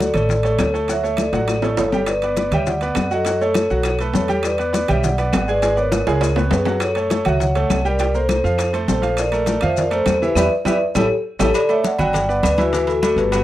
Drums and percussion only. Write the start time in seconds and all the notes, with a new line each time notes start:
0.00 high bongo, high conga, high timbale, maracas
0.14 high bongo, high conga, low conga, high timbale, claves, maracas
0.29 high bongo, high conga, low conga, maracas
0.43 high conga, high timbale, maracas
0.59 high bongo, low bongo, high conga, high timbale, low timbale, claves, maracas
0.74 high bongo, maracas
0.88 high bongo, high conga, high timbale, maracas
1.03 high bongo, high conga, maracas
1.17 high bongo, high conga, high timbale, claves, maracas
1.33 high bongo, high conga, high timbale, maracas
1.48 high bongo, high conga, high timbale, claves, maracas
1.62 low bongo, high conga, high timbale, maracas
1.77 low bongo, high conga, high timbale, maracas
1.92 low bongo, high conga, low timbale, maracas
2.06 high bongo, high conga, high timbale, claves, maracas
2.22 high bongo, high conga, high timbale, maracas
2.37 high bongo, high conga, high timbale, low timbale, maracas
2.52 high conga, low conga, high timbale, claves, maracas
2.67 high bongo, high conga, low conga, maracas
2.81 high bongo, high conga, high timbale, maracas
2.95 high bongo, low bongo, high conga, high timbale, low timbale, claves, maracas
3.11 high bongo, maracas
3.25 high bongo, high conga, high timbale, maracas
3.41 high bongo, high conga, maracas
3.54 high bongo, high conga, high timbale, low timbale, claves, maracas
3.70 high conga, maracas
3.83 high bongo, high conga, high timbale, claves, maracas
3.99 high bongo, high conga, high timbale, maracas
4.14 high bongo, low bongo, high conga, low timbale, maracas
4.28 high bongo, high conga, high timbale, maracas
4.43 high bongo, high conga, high timbale, claves, maracas
4.58 high bongo, high conga, high timbale, maracas
4.73 high bongo, high conga, high timbale, low timbale, maracas
4.88 high conga, low conga, high timbale, claves, maracas
5.04 high bongo, high conga, low conga, maracas
5.18 high bongo, high conga, high timbale, maracas
5.33 high bongo, low bongo, high conga, high timbale, low timbale, claves, maracas
5.48 high bongo, maracas
5.62 high bongo, high conga, high timbale, maracas
5.77 high bongo, high conga, maracas
5.92 high bongo, high conga, high timbale, claves, maracas
6.07 high conga, high timbale, maracas
6.21 high bongo, high conga, high timbale, claves, maracas
6.36 high bongo, high conga, low timbale, maracas
6.51 low bongo, high conga, low timbale, maracas
6.65 low bongo, high conga, low timbale, maracas
6.80 high bongo, high conga, high timbale, claves, maracas
6.95 high bongo, high conga, high timbale, maracas
7.10 high bongo, high conga, high timbale, low timbale, maracas
7.25 high conga, low conga, high timbale, claves, maracas
7.40 high bongo, high conga, low conga, maracas
7.55 high bongo, high conga, high timbale, maracas
7.70 high bongo, low bongo, high conga, high timbale, low timbale, claves, maracas
7.86 high bongo, maracas
7.99 high bongo, high conga, high timbale, maracas
8.14 high bongo, high conga, maracas
8.29 high bongo, high conga, high timbale, low timbale, claves, maracas
8.44 high conga, maracas
8.58 high bongo, high conga, high timbale, claves, maracas
8.73 high bongo, high conga, high timbale, maracas
8.88 high bongo, low bongo, high conga, low timbale, maracas
9.03 high bongo, high timbale, maracas
9.17 high bongo, high conga, high timbale, claves, maracas
9.32 high bongo, high conga, high timbale, maracas
9.46 high bongo, high conga, high timbale, low timbale, maracas
9.61 high conga, low conga, high timbale, claves, maracas
9.77 high bongo, high conga, low conga, maracas
9.91 high bongo, high conga, high timbale, maracas
10.06 high bongo, low bongo, high conga, high timbale, low timbale, claves, maracas
10.22 high bongo, maracas
10.35 low bongo, high conga, high timbale, claves, maracas
10.65 low bongo, high conga, high timbale, claves, maracas
10.95 low bongo, high conga, high timbale, claves, maracas
11.40 low bongo, high conga, high timbale, claves, maracas
11.54 cowbell, high conga, low agogo, claves, maracas
11.69 high conga, low agogo, maracas
11.84 cowbell, high conga, low timbale, maracas
11.98 high conga, low conga, low agogo, claves, maracas
12.13 cowbell, high conga, low conga, low agogo, maracas
12.29 high conga, maracas
12.43 cowbell, high conga, low timbale, low agogo, claves, maracas
12.58 cowbell, high conga, low agogo, maracas
12.73 cowbell, high conga, maracas
12.87 cowbell, high conga, low agogo, maracas
13.02 cowbell, high conga, low timbale, low agogo, claves, maracas
13.18 cowbell, high conga, maracas
13.32 cowbell, high conga, low agogo, claves, maracas